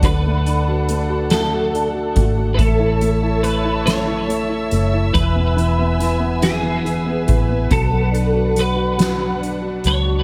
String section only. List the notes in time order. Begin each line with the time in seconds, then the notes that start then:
Already playing: D4 F#5
0.04 A4
2.59 C#5 E5 A5 E6
5.15 B4 G#5
7.73 D4 F#5